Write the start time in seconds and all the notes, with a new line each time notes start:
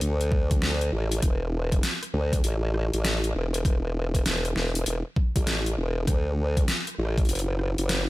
0.01 D2, closed hi-hat
0.21 closed hi-hat
0.32 kick
0.51 kick, closed hi-hat
0.62 snare
0.81 closed hi-hat
0.92 A1
1.12 closed hi-hat
1.22 E1, kick, cross-stick, closed hi-hat
1.72 kick, closed hi-hat
1.83 snare, closed hi-hat
2.03 cross-stick, closed hi-hat
2.14 D2
2.33 kick, closed hi-hat
2.44 A1, closed hi-hat
2.74 cross-stick
2.94 A1, closed hi-hat
3.05 snare, closed hi-hat
3.24 closed hi-hat
3.35 E1
3.54 closed hi-hat
3.65 kick, cross-stick, closed hi-hat
4.15 kick, closed hi-hat
4.26 E1, snare, closed hi-hat
4.45 cross-stick, closed hi-hat
4.56 E1, snare
4.75 closed hi-hat
4.86 E1, closed hi-hat
5.16 kick
5.36 A1, kick, closed hi-hat
5.47 snare, closed hi-hat
5.66 closed hi-hat
5.77 E1
6.07 D2, kick, cross-stick, closed hi-hat
6.57 kick, closed hi-hat
6.68 snare, closed hi-hat
6.87 cross-stick, closed hi-hat
6.95 A1, cross-stick
7.05 cross-stick
7.08 cross-stick
7.18 kick, closed hi-hat
7.25 F#1, closed hi-hat
7.29 closed hi-hat
7.35 closed hi-hat
7.39 closed hi-hat
7.59 cross-stick
7.78 F#1, closed hi-hat
7.89 snare, closed hi-hat